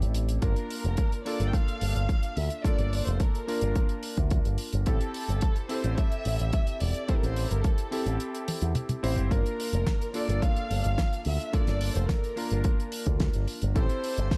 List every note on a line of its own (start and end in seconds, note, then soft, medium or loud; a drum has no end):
0.00 0.37 A1 medium
0.00 0.39 C4 medium
0.00 0.39 E4 medium
0.00 0.39 G4 medium
0.00 0.40 A4 medium
0.00 closed hi-hat soft
0.14 closed hi-hat medium
0.29 closed hi-hat medium
0.42 0.53 G1 medium
0.42 1.22 A#3 medium
0.42 1.22 D4 medium
0.42 1.23 F4 medium
0.42 1.22 A#4 medium
0.42 1.23 A#4 medium
0.42 kick loud
0.42 closed hi-hat medium
0.56 closed hi-hat medium
0.70 open hi-hat loud
0.84 0.95 F1 medium
0.84 closed hi-hat soft
0.97 kick loud
0.97 closed hi-hat medium
1.12 closed hi-hat medium
1.25 2.61 A#3 medium
1.25 2.62 D4 medium
1.25 2.62 F4 medium
1.25 2.62 A4 medium
1.25 1.47 D5 loud
1.25 open hi-hat medium
1.40 1.50 G1 medium
1.40 closed hi-hat soft
1.47 1.54 G5 medium
1.52 2.36 F5 loud
1.52 kick loud
1.52 closed hi-hat medium
1.68 closed hi-hat soft
1.81 1.92 G1 medium
1.81 open hi-hat loud
1.95 2.06 G1 medium
1.95 closed hi-hat soft
2.09 kick loud
2.09 closed hi-hat medium
2.23 closed hi-hat medium
2.36 2.48 D2 medium
2.36 2.64 E5 medium
2.36 open hi-hat medium
2.50 closed hi-hat soft
2.64 3.45 A#3 medium
2.64 3.45 D4 medium
2.64 3.45 F4 medium
2.64 3.46 A4 medium
2.64 3.06 D5 loud
2.64 muted picked electric bass stroke soft
2.64 kick loud
2.64 closed hi-hat medium
2.79 3.00 G1 medium
2.79 closed hi-hat soft
2.93 open hi-hat loud
3.06 3.17 F1 medium
3.06 3.20 C5 medium
3.06 closed hi-hat medium
3.20 4.04 A#4 medium
3.20 kick loud
3.20 closed hi-hat medium
3.35 closed hi-hat medium
3.47 4.83 A#3 medium
3.47 4.84 D4 medium
3.47 4.84 F4 medium
3.47 4.84 A#4 medium
3.47 open hi-hat medium
3.61 3.73 G1 medium
3.61 closed hi-hat medium
3.75 kick loud
3.75 closed hi-hat medium
3.89 closed hi-hat soft
4.03 open hi-hat loud
4.17 4.39 D2 medium
4.17 kick medium
4.17 closed hi-hat soft
4.30 kick loud
4.30 closed hi-hat medium
4.45 4.56 G1 medium
4.45 closed hi-hat soft
4.58 open hi-hat medium
4.73 4.84 G1 medium
4.73 closed hi-hat medium
4.86 4.98 A1 medium
4.86 5.67 C4 medium
4.86 5.67 E4 medium
4.86 5.67 G4 medium
4.86 5.67 A4 medium
4.86 5.68 A4 medium
4.86 kick loud
4.86 closed hi-hat medium
5.01 closed hi-hat medium
5.14 open hi-hat loud
5.29 5.39 G1 loud
5.29 closed hi-hat medium
5.41 kick loud
5.41 closed hi-hat medium
5.56 closed hi-hat soft
5.69 7.05 C4 medium
5.69 7.06 E4 medium
5.69 7.06 G4 medium
5.69 7.06 A4 medium
5.69 5.98 C5 medium
5.69 open hi-hat medium
5.84 5.95 A1 medium
5.84 closed hi-hat medium
5.98 6.82 E5 loud
5.98 kick loud
5.98 closed hi-hat medium
6.12 closed hi-hat medium
6.25 6.37 A1 medium
6.25 open hi-hat medium
6.39 6.50 A1 medium
6.39 closed hi-hat soft
6.53 kick loud
6.53 closed hi-hat medium
6.67 closed hi-hat medium
6.80 6.92 E1 medium
6.80 7.09 D5 medium
6.80 open hi-hat medium
6.94 closed hi-hat soft
7.08 7.89 C4 medium
7.08 7.89 E4 medium
7.08 7.89 G4 medium
7.08 7.90 A4 medium
7.08 7.16 C5 medium
7.08 muted picked electric bass stroke soft
7.08 kick loud
7.08 closed hi-hat medium
7.16 7.23 A#4 medium
7.23 7.44 A1 medium
7.23 7.51 C5 medium
7.23 closed hi-hat medium
7.36 open hi-hat medium
7.50 7.61 G1 medium
7.50 7.64 A#4 medium
7.50 closed hi-hat medium
7.64 8.48 A4 medium
7.64 kick loud
7.64 closed hi-hat medium
7.78 closed hi-hat medium
7.91 9.00 C4 medium
7.91 9.01 E4 medium
7.91 9.01 G4 medium
7.91 9.01 A4 medium
7.91 open hi-hat medium
8.06 8.17 A1 medium
8.06 closed hi-hat medium
8.20 closed hi-hat medium
8.35 closed hi-hat soft
8.48 open hi-hat loud
8.48 high tom medium
8.61 8.73 E2 medium
8.61 closed hi-hat soft
8.75 closed hi-hat medium
8.75 mid tom medium
8.89 closed hi-hat soft
8.89 mid tom medium
9.03 9.14 A1 medium
9.03 9.28 C4 medium
9.03 9.28 E4 medium
9.03 9.28 G4 medium
9.03 9.28 C5 medium
9.03 open hi-hat medium
9.16 9.28 G1 medium
9.16 closed hi-hat medium
9.16 mid tom medium
9.30 9.42 G1 medium
9.30 10.11 A#3 medium
9.30 10.11 D4 medium
9.30 10.12 F4 medium
9.30 10.12 A#4 medium
9.30 10.11 A#4 medium
9.30 kick loud
9.30 closed hi-hat medium
9.46 closed hi-hat medium
9.60 open hi-hat loud
9.73 9.84 F1 loud
9.73 closed hi-hat medium
9.87 kick loud
9.87 snare loud
9.87 closed hi-hat medium
10.01 closed hi-hat medium
10.14 11.50 A#3 medium
10.14 11.50 D4 medium
10.14 11.51 F4 medium
10.14 11.51 A4 medium
10.14 10.43 D5 medium
10.14 open hi-hat medium
10.29 10.39 G1 medium
10.29 closed hi-hat medium
10.42 11.26 F5 loud
10.42 kick loud
10.42 closed hi-hat medium
10.56 closed hi-hat medium
10.71 10.81 G1 medium
10.71 open hi-hat medium
10.84 10.95 G1 medium
10.84 closed hi-hat soft
10.98 kick loud
10.98 snare loud
10.98 closed hi-hat medium
11.13 closed hi-hat medium
11.25 11.37 D2 medium
11.25 11.52 E5 medium
11.25 open hi-hat medium
11.40 closed hi-hat medium
11.53 12.33 A#3 medium
11.53 12.34 D4 medium
11.53 12.34 F4 medium
11.53 12.34 A4 medium
11.53 11.96 D5 loud
11.53 muted picked electric bass stroke soft
11.53 kick loud
11.53 closed hi-hat medium
11.67 11.89 G1 medium
11.67 snare soft
11.67 closed hi-hat soft
11.81 open hi-hat loud
11.95 12.06 F1 loud
11.95 12.09 C5 medium
11.95 closed hi-hat medium
12.09 12.92 A#4 medium
12.09 kick loud
12.09 snare loud
12.09 closed hi-hat medium
12.24 closed hi-hat medium
12.36 13.72 A#3 medium
12.36 13.72 D4 medium
12.36 13.73 F4 medium
12.36 13.73 A#4 medium
12.36 open hi-hat medium
12.50 12.62 G1 medium
12.50 closed hi-hat soft
12.64 kick loud
12.64 closed hi-hat medium
12.80 closed hi-hat soft
12.92 open hi-hat loud
13.06 13.28 D2 medium
13.06 kick medium
13.06 closed hi-hat soft
13.20 kick loud
13.20 snare loud
13.20 closed hi-hat medium
13.33 13.45 G1 medium
13.33 closed hi-hat medium
13.48 open hi-hat medium
13.62 13.73 G1 medium
13.62 closed hi-hat medium
13.75 13.87 A1 loud
13.75 14.38 C4 medium
13.75 14.38 E4 medium
13.75 14.38 G4 medium
13.75 14.38 A4 medium
13.75 14.38 C5 loud
13.75 kick loud
13.75 closed hi-hat medium
13.89 closed hi-hat medium
14.04 open hi-hat loud
14.17 14.28 G1 loud
14.17 closed hi-hat soft
14.31 kick loud
14.31 snare loud
14.31 closed hi-hat medium